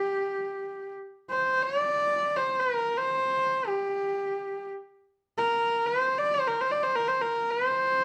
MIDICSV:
0, 0, Header, 1, 2, 480
1, 0, Start_track
1, 0, Tempo, 500000
1, 7722, End_track
2, 0, Start_track
2, 0, Title_t, "Horsehead fiddle"
2, 0, Program_c, 0, 110
2, 0, Note_on_c, 0, 67, 73
2, 904, Note_off_c, 0, 67, 0
2, 1248, Note_on_c, 0, 72, 80
2, 1558, Note_on_c, 0, 74, 97
2, 1572, Note_off_c, 0, 72, 0
2, 2269, Note_on_c, 0, 72, 79
2, 2283, Note_off_c, 0, 74, 0
2, 2493, Note_on_c, 0, 70, 78
2, 2508, Note_off_c, 0, 72, 0
2, 2855, Note_on_c, 0, 72, 85
2, 2870, Note_off_c, 0, 70, 0
2, 3527, Note_on_c, 0, 67, 69
2, 3541, Note_off_c, 0, 72, 0
2, 4506, Note_off_c, 0, 67, 0
2, 5163, Note_on_c, 0, 70, 85
2, 5631, Note_on_c, 0, 72, 87
2, 5645, Note_off_c, 0, 70, 0
2, 5939, Note_on_c, 0, 74, 91
2, 5953, Note_off_c, 0, 72, 0
2, 6088, Note_on_c, 0, 72, 83
2, 6103, Note_off_c, 0, 74, 0
2, 6218, Note_on_c, 0, 70, 81
2, 6232, Note_off_c, 0, 72, 0
2, 6346, Note_on_c, 0, 72, 81
2, 6361, Note_off_c, 0, 70, 0
2, 6443, Note_on_c, 0, 74, 82
2, 6457, Note_off_c, 0, 72, 0
2, 6557, Note_on_c, 0, 72, 78
2, 6571, Note_off_c, 0, 74, 0
2, 6677, Note_on_c, 0, 70, 82
2, 6692, Note_off_c, 0, 72, 0
2, 6794, Note_on_c, 0, 72, 79
2, 6809, Note_off_c, 0, 70, 0
2, 6926, Note_on_c, 0, 70, 80
2, 6940, Note_off_c, 0, 72, 0
2, 7209, Note_on_c, 0, 72, 88
2, 7223, Note_off_c, 0, 70, 0
2, 7722, Note_off_c, 0, 72, 0
2, 7722, End_track
0, 0, End_of_file